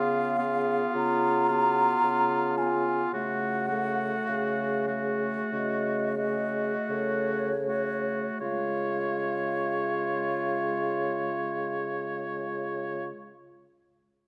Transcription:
0.00 0.81 C#3 soft
0.00 0.36 B3 soft
0.00 0.36 F4 soft
0.00 0.96 G#4 medium
0.00 0.95 F5 medium
0.38 1.47 B3 medium
0.38 1.47 F4 soft
0.94 1.91 C#3 medium
0.94 1.50 F4 medium
0.94 2.59 A#5 medium
1.48 2.57 B3 soft
1.48 2.56 F4 soft
1.48 2.02 F#4 soft
2.03 3.00 C#3 soft
2.03 3.11 F4 medium
2.58 3.13 B3 soft
2.58 3.12 F4 soft
2.58 3.12 G#5 medium
3.13 4.14 C#3 soft
3.13 3.69 A3 soft
3.13 3.72 F#4 soft
3.13 3.68 F#4 soft
3.13 4.29 F#5 medium
3.68 4.88 A3 soft
3.68 4.87 F#4 soft
3.68 4.30 A4 medium
4.28 5.38 C#3 soft
4.28 5.53 G#4 soft
4.28 5.16 F5 medium
4.88 6.15 A3 soft
4.88 6.15 F#4 soft
5.52 6.72 C#3 soft
5.52 6.17 F#4 soft
5.52 6.91 D#5 medium
6.17 7.50 A3 soft
6.17 7.51 F#4 soft
6.17 6.73 G#4 soft
6.89 8.25 C#3 soft
6.89 7.66 A4 soft
6.89 8.41 C#5 medium
7.67 8.40 A3 soft
7.67 8.40 F#4 soft
8.41 13.07 C#3 soft
8.41 13.08 G#3 soft
8.41 13.08 F4 soft
8.41 13.07 C#5 soft
8.41 13.07 F5 soft

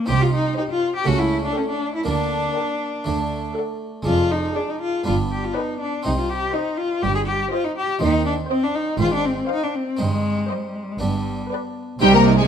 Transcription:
0.06 0.47 C3 soft
0.06 0.48 C3 medium
0.06 1.02 C4 soft
0.06 1.03 D#4 soft
0.06 0.23 G4 loud
0.10 0.48 C2 medium
0.22 0.33 F4 medium
0.33 0.57 D#4 medium
0.57 0.63 D#4 medium
0.57 0.94 G4 medium
0.57 0.94 C5 medium
0.57 0.94 D#5 medium
0.70 0.94 F4 medium
0.96 1.08 G4 medium
1.04 1.46 C#2 medium
1.04 1.46 C#3 medium
1.04 1.45 C#3 soft
1.04 2.02 A3 soft
1.04 2.02 C#4 soft
1.04 1.20 F#4 medium
1.19 1.44 E4 medium
1.45 1.58 D4 medium
1.56 1.68 C#4 medium
1.56 1.93 A4 soft
1.56 1.94 A4 medium
1.56 1.93 G5 medium
1.69 1.93 D4 medium
1.95 2.07 E4 medium
2.04 2.46 D2 medium
2.04 2.46 D3 medium
2.04 2.45 D3 soft
2.04 3.02 A#3 soft
2.04 3.03 D4 soft
2.04 3.54 D4 medium
2.56 2.94 A#4 soft
2.56 2.93 D5 soft
2.56 2.93 G5 soft
3.04 3.46 D2 medium
3.04 3.46 D3 medium
3.04 3.45 D3 soft
3.04 4.02 A3 soft
3.04 4.03 D4 soft
3.56 3.94 A4 soft
3.56 3.94 D5 soft
3.56 3.94 F#5 soft
4.02 5.01 G#3 soft
4.02 5.02 D4 soft
4.07 4.46 F1 medium
4.07 4.46 F2 medium
4.07 4.45 F2 soft
4.07 4.33 F4 medium
4.31 4.57 D#4 medium
4.56 4.71 D4 medium
4.56 4.93 G#4 soft
4.56 4.93 D5 medium
4.56 4.93 G#5 soft
4.70 4.80 D#4 medium
4.81 5.05 F4 medium
5.03 5.45 G1 medium
5.03 5.44 G2 soft
5.03 5.45 G2 medium
5.03 6.01 B3 soft
5.03 6.01 D4 soft
5.03 5.14 F4 medium
5.31 5.46 G4 medium
5.44 5.57 F4 medium
5.55 5.79 D#4 medium
5.55 5.92 B4 medium
5.55 5.92 D5 soft
5.55 5.93 G5 soft
5.80 6.04 D4 medium
6.03 6.44 C2 medium
6.03 6.44 C3 medium
6.03 6.43 C3 soft
6.03 7.96 C4 soft
6.03 7.97 D#4 soft
6.03 6.10 D#4 medium
6.19 6.31 F4 medium
6.30 6.55 G4 medium
6.54 6.79 D#4 medium
6.54 6.90 C5 medium
6.54 6.91 D#5 medium
6.54 6.90 G5 soft
6.78 7.04 F4 medium
7.02 7.42 G1 medium
7.02 7.42 G2 medium
7.02 7.41 G2 soft
7.02 7.15 G4 medium
7.15 7.20 G#4 medium
7.26 7.51 G4 medium
7.52 7.66 F4 medium
7.52 7.89 C5 medium
7.52 7.89 D#5 medium
7.52 7.89 G5 soft
7.64 7.77 D#4 medium
7.78 8.01 G4 medium
7.99 8.40 D#2 medium
7.99 8.40 D#3 medium
7.99 8.39 D#3 medium
7.99 8.95 C4 soft
7.99 8.25 D#4 medium
8.26 8.34 D4 medium
8.50 8.65 C4 medium
8.50 8.87 C5 medium
8.50 8.87 D#5 medium
8.50 8.87 G5 medium
8.64 8.77 D4 medium
8.75 9.00 D#4 medium
8.97 9.39 G#1 medium
8.97 9.39 G#2 medium
8.97 9.38 G#2 soft
8.97 9.95 C4 soft
8.97 9.12 F4 medium
9.14 9.27 D4 medium
9.25 9.50 C4 medium
9.49 9.65 D#4 medium
9.49 9.86 C5 medium
9.49 9.86 F5 medium
9.49 9.87 F5 medium
9.63 9.77 D4 medium
9.75 10.01 C4 medium
9.97 10.40 G1 medium
9.97 10.38 G2 soft
9.97 10.39 G2 medium
9.97 10.52 G#3 medium
9.97 10.96 C4 soft
9.97 10.97 D#4 soft
10.49 10.60 G3 soft
10.49 10.87 C5 soft
10.49 10.88 D#5 medium
10.49 10.87 G5 soft
10.58 10.69 G#3 soft
10.67 10.77 G3 soft
10.75 10.85 G#3 soft
10.84 10.93 G3 soft
10.92 11.01 G#3 soft
10.98 11.41 G1 medium
10.98 11.41 G2 medium
10.98 11.40 G2 soft
10.98 11.09 G3 soft
10.98 11.98 B3 soft
10.98 11.98 D4 soft
11.08 11.18 G#3 soft
11.16 11.52 G3 medium
11.51 11.89 B4 medium
11.51 11.89 D5 soft
11.51 11.89 G5 soft
11.99 12.46 C2 medium
11.99 12.46 C3 medium
11.99 12.43 C3 medium
11.99 12.16 G3 medium
11.99 12.47 C4 medium
11.99 12.47 D#4 medium
11.99 12.09 D#4 medium
11.99 12.13 G4 medium
11.99 12.13 G5 loud
12.14 12.39 A#3 medium
12.14 12.39 A#4 medium
12.14 12.22 A#5 loud
12.27 12.35 D#4 medium
12.37 12.47 G#3 medium
12.37 12.47 G#4 medium
12.37 12.47 G#5 medium

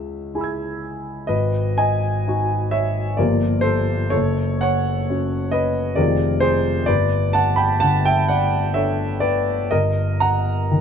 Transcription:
0.00 1.25 C#2 soft
0.00 0.90 G#3 soft
0.00 0.77 C#5 medium
0.00 0.80 E5 medium
0.34 1.25 E4 soft
0.34 1.26 G#4 soft
0.34 1.25 G#5 soft
0.34 1.27 B5 soft
0.41 1.28 E6 soft
0.41 1.30 G#6 soft
1.27 3.14 G#1 soft
1.27 1.76 B4 medium
1.27 1.77 D#5 medium
1.78 2.68 D#5 medium
1.78 2.71 G#5 medium
2.28 3.14 D#4 soft
2.28 3.14 F#4 soft
2.71 3.14 C#5 medium
2.71 3.17 E5 medium
3.17 4.11 G1 medium
3.17 4.10 F3 soft
3.17 4.10 G3 soft
3.17 3.20 A#3 soft
3.17 4.11 A#3 soft
3.17 4.11 F4 soft
3.17 3.61 A#4 soft
3.17 3.64 D5 medium
3.61 4.09 A4 medium
3.61 4.12 C5 medium
4.10 5.94 F#1 medium
4.10 4.59 A4 medium
4.10 4.61 C#5 medium
4.61 5.50 C#5 medium
4.61 5.53 F#5 medium
5.10 5.95 C#4 soft
5.10 5.94 F#4 soft
5.51 5.95 B4 medium
5.51 5.97 D#5 medium
5.96 6.86 F1 medium
5.96 6.84 D#3 soft
5.96 6.85 C4 soft
5.96 6.85 F4 soft
5.96 6.40 G#4 soft
5.96 6.39 A#4 soft
5.96 6.42 D5 medium
6.40 6.85 G#4 medium
6.40 6.88 C5 medium
6.86 9.67 G1 medium
6.86 7.31 B4 medium
6.86 7.34 D5 medium
7.33 7.57 F#5 medium
7.33 7.58 A5 medium
7.56 7.80 G5 medium
7.56 7.81 B5 medium
7.80 9.31 D3 soft
7.80 8.03 F#5 medium
7.80 8.04 A5 medium
8.05 8.28 E5 medium
8.05 8.29 G5 medium
8.28 8.72 D5 medium
8.28 8.75 F#5 medium
8.74 9.67 D4 soft
8.74 9.68 A4 soft
8.74 9.18 C#5 medium
8.74 9.21 E5 medium
9.20 9.68 B4 medium
9.20 9.70 D5 medium
9.71 10.81 G1 medium
9.71 10.19 A#4 medium
9.71 10.22 D#5 medium
10.20 10.81 F#5 medium
10.20 10.81 A#5 medium
10.71 10.81 D#3 soft

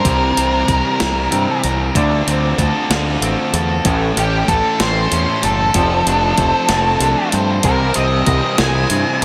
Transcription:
0.00 1.61 A#4 medium
0.00 0.67 C5 medium
0.04 0.31 C2 loud
0.04 1.95 C3 medium
0.04 1.64 C3 medium
0.04 1.95 E3 medium
0.04 1.95 G3 medium
0.04 1.96 C4 medium
0.04 1.96 E4 medium
0.04 kick loud
0.04 closed hi-hat medium
0.37 0.62 C2 medium
0.37 1.30 C4 medium
0.37 closed hi-hat medium
0.68 0.81 C2 medium
0.68 1.62 A#4 medium
0.68 kick medium
0.68 closed hi-hat medium
1.00 1.26 C2 loud
1.00 1.95 E4 medium
1.00 snare loud
1.00 closed hi-hat medium
1.31 1.45 G2 loud
1.31 1.95 C4 medium
1.31 closed hi-hat medium
1.63 1.89 C2 medium
1.63 1.95 A#4 medium
1.63 closed hi-hat medium
1.95 2.21 D2 loud
1.95 3.54 D3 medium
1.95 3.85 D3 medium
1.95 3.86 A3 medium
1.95 3.86 D4 medium
1.95 3.87 F4 medium
1.95 kick loud
1.95 closed hi-hat medium
2.27 2.53 D2 medium
2.27 3.22 C4 medium
2.27 closed hi-hat medium
2.58 2.71 D2 loud
2.58 3.55 A4 medium
2.58 kick medium
2.58 closed hi-hat medium
2.90 3.16 D2 loud
2.90 3.85 F4 medium
2.90 snare loud
2.90 closed hi-hat medium
3.21 3.34 A1 medium
3.21 3.86 C4 medium
3.21 closed hi-hat medium
3.53 3.79 E2 medium
3.53 4.48 A4 medium
3.53 closed hi-hat medium
3.84 4.11 A1 loud
3.84 5.74 A2 medium
3.84 5.44 A2 medium
3.84 5.74 E3 medium
3.84 5.74 A3 medium
3.84 5.76 C#4 medium
3.84 5.76 E4 medium
3.84 kick loud
3.84 closed hi-hat medium
4.17 4.42 A1 medium
4.17 5.11 C#4 medium
4.17 4.49 G4 medium
4.17 closed hi-hat medium
4.48 4.61 A1 loud
4.48 4.79 A4 medium
4.48 5.41 A4 medium
4.48 kick medium
4.48 closed hi-hat medium
4.80 5.06 A1 loud
4.80 5.75 E4 medium
4.80 5.42 C5 medium
4.80 snare loud
4.80 closed hi-hat loud
5.12 5.25 E2 medium
5.12 5.75 C#4 medium
5.12 closed hi-hat medium
5.42 5.69 F#1 medium
5.42 5.75 A4 medium
5.42 7.30 A4 medium
5.42 closed hi-hat medium
5.74 6.01 F1 loud
5.74 7.64 F3 medium
5.74 7.33 F3 medium
5.74 7.65 A3 medium
5.74 7.66 C4 medium
5.74 7.66 F4 medium
5.74 kick loud
5.74 closed hi-hat loud
6.06 6.32 F1 medium
6.06 7.00 D4 medium
6.06 closed hi-hat medium
6.38 6.51 F1 loud
6.38 7.33 C5 medium
6.38 kick medium
6.38 closed hi-hat medium
6.69 6.95 F1 loud
6.69 7.64 A4 medium
6.69 snare loud
6.69 closed hi-hat loud
7.00 7.13 C2 medium
7.00 7.65 D4 medium
7.00 closed hi-hat medium
7.32 7.59 G2 loud
7.32 8.26 C5 medium
7.32 closed hi-hat medium
7.63 7.90 C2 loud
7.63 9.25 C3 medium
7.63 9.23 C3 medium
7.63 9.25 E3 medium
7.63 9.25 G3 medium
7.63 9.25 C4 medium
7.63 7.95 A#4 loud
7.63 kick loud
7.63 closed hi-hat medium
7.68 9.25 E4 medium
7.94 8.22 C2 medium
7.94 8.90 C4 medium
7.94 8.57 D#5 loud
7.94 closed hi-hat medium
8.26 8.40 C2 loud
8.26 9.21 A#4 medium
8.26 kick medium
8.26 closed hi-hat medium
8.58 8.85 C2 loud
8.58 9.25 E4 medium
8.58 9.21 G#5 medium
8.58 snare loud
8.58 closed hi-hat medium
8.90 9.03 G2 loud
8.90 9.25 C4 medium
8.90 closed hi-hat medium

